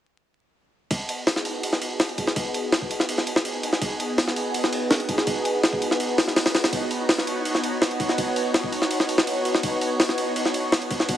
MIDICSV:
0, 0, Header, 1, 3, 480
1, 0, Start_track
1, 0, Key_signature, 5, "minor"
1, 0, Tempo, 363636
1, 1200, Time_signature, 4, 2, 24, 8
1, 14747, End_track
2, 0, Start_track
2, 0, Title_t, "Analog synth pad"
2, 0, Program_c, 0, 89
2, 1197, Note_on_c, 0, 59, 78
2, 1198, Note_on_c, 0, 66, 68
2, 1199, Note_on_c, 0, 63, 71
2, 1199, Note_on_c, 0, 68, 83
2, 8852, Note_off_c, 0, 68, 0
2, 8879, Note_on_c, 0, 73, 89
2, 14747, Note_off_c, 0, 59, 0
2, 14747, Note_off_c, 0, 63, 0
2, 14747, Note_off_c, 0, 66, 0
2, 14747, Note_off_c, 0, 73, 0
2, 14747, End_track
3, 0, Start_track
3, 0, Title_t, "Drums"
3, 1196, Note_on_c, 9, 36, 100
3, 1197, Note_on_c, 9, 51, 80
3, 1328, Note_off_c, 9, 36, 0
3, 1329, Note_off_c, 9, 51, 0
3, 1437, Note_on_c, 9, 51, 57
3, 1569, Note_off_c, 9, 51, 0
3, 1676, Note_on_c, 9, 38, 98
3, 1676, Note_on_c, 9, 46, 72
3, 1799, Note_off_c, 9, 38, 0
3, 1799, Note_on_c, 9, 38, 42
3, 1808, Note_off_c, 9, 46, 0
3, 1916, Note_on_c, 9, 51, 59
3, 1931, Note_off_c, 9, 38, 0
3, 2048, Note_off_c, 9, 51, 0
3, 2158, Note_on_c, 9, 51, 72
3, 2280, Note_on_c, 9, 38, 43
3, 2290, Note_off_c, 9, 51, 0
3, 2398, Note_on_c, 9, 51, 64
3, 2412, Note_off_c, 9, 38, 0
3, 2530, Note_off_c, 9, 51, 0
3, 2637, Note_on_c, 9, 38, 106
3, 2637, Note_on_c, 9, 51, 81
3, 2760, Note_off_c, 9, 51, 0
3, 2760, Note_on_c, 9, 51, 38
3, 2769, Note_off_c, 9, 38, 0
3, 2877, Note_off_c, 9, 51, 0
3, 2877, Note_on_c, 9, 36, 80
3, 2877, Note_on_c, 9, 51, 60
3, 3001, Note_on_c, 9, 38, 44
3, 3009, Note_off_c, 9, 36, 0
3, 3009, Note_off_c, 9, 51, 0
3, 3117, Note_on_c, 9, 36, 97
3, 3118, Note_on_c, 9, 51, 81
3, 3133, Note_off_c, 9, 38, 0
3, 3249, Note_off_c, 9, 36, 0
3, 3250, Note_off_c, 9, 51, 0
3, 3357, Note_on_c, 9, 51, 57
3, 3489, Note_off_c, 9, 51, 0
3, 3595, Note_on_c, 9, 38, 104
3, 3595, Note_on_c, 9, 51, 79
3, 3719, Note_on_c, 9, 36, 86
3, 3727, Note_off_c, 9, 38, 0
3, 3727, Note_off_c, 9, 51, 0
3, 3837, Note_on_c, 9, 51, 59
3, 3851, Note_off_c, 9, 36, 0
3, 3958, Note_on_c, 9, 38, 40
3, 3969, Note_off_c, 9, 51, 0
3, 4076, Note_on_c, 9, 51, 76
3, 4090, Note_off_c, 9, 38, 0
3, 4198, Note_on_c, 9, 38, 44
3, 4208, Note_off_c, 9, 51, 0
3, 4316, Note_on_c, 9, 51, 62
3, 4330, Note_off_c, 9, 38, 0
3, 4438, Note_on_c, 9, 38, 101
3, 4448, Note_off_c, 9, 51, 0
3, 4555, Note_on_c, 9, 51, 79
3, 4570, Note_off_c, 9, 38, 0
3, 4687, Note_off_c, 9, 51, 0
3, 4797, Note_on_c, 9, 51, 61
3, 4920, Note_on_c, 9, 38, 49
3, 4929, Note_off_c, 9, 51, 0
3, 5037, Note_on_c, 9, 36, 98
3, 5037, Note_on_c, 9, 51, 81
3, 5052, Note_off_c, 9, 38, 0
3, 5169, Note_off_c, 9, 36, 0
3, 5169, Note_off_c, 9, 51, 0
3, 5278, Note_on_c, 9, 51, 60
3, 5410, Note_off_c, 9, 51, 0
3, 5518, Note_on_c, 9, 38, 104
3, 5518, Note_on_c, 9, 46, 69
3, 5643, Note_off_c, 9, 38, 0
3, 5643, Note_on_c, 9, 38, 41
3, 5650, Note_off_c, 9, 46, 0
3, 5759, Note_on_c, 9, 51, 61
3, 5775, Note_off_c, 9, 38, 0
3, 5891, Note_off_c, 9, 51, 0
3, 5997, Note_on_c, 9, 51, 74
3, 6122, Note_on_c, 9, 38, 46
3, 6129, Note_off_c, 9, 51, 0
3, 6238, Note_on_c, 9, 51, 61
3, 6254, Note_off_c, 9, 38, 0
3, 6370, Note_off_c, 9, 51, 0
3, 6476, Note_on_c, 9, 38, 103
3, 6476, Note_on_c, 9, 51, 82
3, 6599, Note_off_c, 9, 51, 0
3, 6599, Note_on_c, 9, 51, 41
3, 6608, Note_off_c, 9, 38, 0
3, 6715, Note_off_c, 9, 51, 0
3, 6715, Note_on_c, 9, 51, 60
3, 6716, Note_on_c, 9, 36, 83
3, 6838, Note_on_c, 9, 38, 44
3, 6847, Note_off_c, 9, 51, 0
3, 6848, Note_off_c, 9, 36, 0
3, 6956, Note_on_c, 9, 51, 80
3, 6957, Note_on_c, 9, 36, 99
3, 6970, Note_off_c, 9, 38, 0
3, 7088, Note_off_c, 9, 51, 0
3, 7089, Note_off_c, 9, 36, 0
3, 7197, Note_on_c, 9, 51, 61
3, 7329, Note_off_c, 9, 51, 0
3, 7438, Note_on_c, 9, 38, 101
3, 7438, Note_on_c, 9, 51, 79
3, 7560, Note_on_c, 9, 36, 88
3, 7570, Note_off_c, 9, 38, 0
3, 7570, Note_off_c, 9, 51, 0
3, 7680, Note_on_c, 9, 51, 62
3, 7692, Note_off_c, 9, 36, 0
3, 7803, Note_on_c, 9, 38, 40
3, 7812, Note_off_c, 9, 51, 0
3, 7919, Note_on_c, 9, 51, 73
3, 7935, Note_off_c, 9, 38, 0
3, 8051, Note_off_c, 9, 51, 0
3, 8159, Note_on_c, 9, 38, 95
3, 8159, Note_on_c, 9, 46, 69
3, 8283, Note_off_c, 9, 38, 0
3, 8283, Note_on_c, 9, 38, 35
3, 8291, Note_off_c, 9, 46, 0
3, 8400, Note_off_c, 9, 38, 0
3, 8400, Note_on_c, 9, 38, 92
3, 8400, Note_on_c, 9, 46, 66
3, 8523, Note_off_c, 9, 38, 0
3, 8523, Note_off_c, 9, 46, 0
3, 8523, Note_on_c, 9, 38, 94
3, 8523, Note_on_c, 9, 46, 67
3, 8641, Note_off_c, 9, 38, 0
3, 8641, Note_off_c, 9, 46, 0
3, 8641, Note_on_c, 9, 38, 93
3, 8641, Note_on_c, 9, 46, 64
3, 8764, Note_off_c, 9, 38, 0
3, 8764, Note_off_c, 9, 46, 0
3, 8764, Note_on_c, 9, 38, 94
3, 8764, Note_on_c, 9, 46, 66
3, 8878, Note_on_c, 9, 36, 100
3, 8880, Note_on_c, 9, 51, 79
3, 8896, Note_off_c, 9, 38, 0
3, 8896, Note_off_c, 9, 46, 0
3, 9010, Note_off_c, 9, 36, 0
3, 9012, Note_off_c, 9, 51, 0
3, 9119, Note_on_c, 9, 51, 57
3, 9251, Note_off_c, 9, 51, 0
3, 9360, Note_on_c, 9, 38, 110
3, 9360, Note_on_c, 9, 46, 75
3, 9483, Note_off_c, 9, 38, 0
3, 9483, Note_on_c, 9, 38, 42
3, 9492, Note_off_c, 9, 46, 0
3, 9600, Note_on_c, 9, 51, 60
3, 9615, Note_off_c, 9, 38, 0
3, 9732, Note_off_c, 9, 51, 0
3, 9840, Note_on_c, 9, 51, 75
3, 9962, Note_on_c, 9, 38, 44
3, 9972, Note_off_c, 9, 51, 0
3, 10078, Note_on_c, 9, 51, 61
3, 10094, Note_off_c, 9, 38, 0
3, 10210, Note_off_c, 9, 51, 0
3, 10318, Note_on_c, 9, 38, 106
3, 10318, Note_on_c, 9, 51, 78
3, 10441, Note_off_c, 9, 51, 0
3, 10441, Note_on_c, 9, 51, 40
3, 10450, Note_off_c, 9, 38, 0
3, 10557, Note_on_c, 9, 36, 90
3, 10558, Note_off_c, 9, 51, 0
3, 10558, Note_on_c, 9, 51, 65
3, 10681, Note_on_c, 9, 38, 43
3, 10689, Note_off_c, 9, 36, 0
3, 10690, Note_off_c, 9, 51, 0
3, 10797, Note_on_c, 9, 36, 98
3, 10799, Note_on_c, 9, 51, 78
3, 10813, Note_off_c, 9, 38, 0
3, 10929, Note_off_c, 9, 36, 0
3, 10931, Note_off_c, 9, 51, 0
3, 11038, Note_on_c, 9, 51, 63
3, 11170, Note_off_c, 9, 51, 0
3, 11277, Note_on_c, 9, 38, 108
3, 11277, Note_on_c, 9, 51, 77
3, 11399, Note_on_c, 9, 36, 88
3, 11409, Note_off_c, 9, 38, 0
3, 11409, Note_off_c, 9, 51, 0
3, 11518, Note_on_c, 9, 51, 61
3, 11531, Note_off_c, 9, 36, 0
3, 11640, Note_on_c, 9, 38, 39
3, 11650, Note_off_c, 9, 51, 0
3, 11757, Note_on_c, 9, 51, 77
3, 11772, Note_off_c, 9, 38, 0
3, 11880, Note_on_c, 9, 38, 46
3, 11889, Note_off_c, 9, 51, 0
3, 11998, Note_on_c, 9, 51, 63
3, 12012, Note_off_c, 9, 38, 0
3, 12119, Note_on_c, 9, 38, 104
3, 12130, Note_off_c, 9, 51, 0
3, 12238, Note_on_c, 9, 51, 82
3, 12251, Note_off_c, 9, 38, 0
3, 12370, Note_off_c, 9, 51, 0
3, 12476, Note_on_c, 9, 51, 64
3, 12599, Note_on_c, 9, 38, 50
3, 12608, Note_off_c, 9, 51, 0
3, 12715, Note_on_c, 9, 51, 79
3, 12716, Note_on_c, 9, 36, 103
3, 12731, Note_off_c, 9, 38, 0
3, 12847, Note_off_c, 9, 51, 0
3, 12848, Note_off_c, 9, 36, 0
3, 12954, Note_on_c, 9, 51, 62
3, 13086, Note_off_c, 9, 51, 0
3, 13196, Note_on_c, 9, 38, 104
3, 13196, Note_on_c, 9, 46, 77
3, 13318, Note_off_c, 9, 38, 0
3, 13318, Note_on_c, 9, 38, 43
3, 13328, Note_off_c, 9, 46, 0
3, 13435, Note_on_c, 9, 51, 64
3, 13450, Note_off_c, 9, 38, 0
3, 13567, Note_off_c, 9, 51, 0
3, 13676, Note_on_c, 9, 51, 74
3, 13800, Note_on_c, 9, 38, 44
3, 13808, Note_off_c, 9, 51, 0
3, 13917, Note_on_c, 9, 51, 64
3, 13932, Note_off_c, 9, 38, 0
3, 14049, Note_off_c, 9, 51, 0
3, 14155, Note_on_c, 9, 38, 111
3, 14155, Note_on_c, 9, 51, 82
3, 14280, Note_off_c, 9, 51, 0
3, 14280, Note_on_c, 9, 51, 40
3, 14287, Note_off_c, 9, 38, 0
3, 14396, Note_off_c, 9, 51, 0
3, 14396, Note_on_c, 9, 36, 87
3, 14396, Note_on_c, 9, 51, 64
3, 14519, Note_on_c, 9, 38, 46
3, 14528, Note_off_c, 9, 36, 0
3, 14528, Note_off_c, 9, 51, 0
3, 14634, Note_on_c, 9, 51, 81
3, 14636, Note_on_c, 9, 36, 100
3, 14651, Note_off_c, 9, 38, 0
3, 14747, Note_off_c, 9, 36, 0
3, 14747, Note_off_c, 9, 51, 0
3, 14747, End_track
0, 0, End_of_file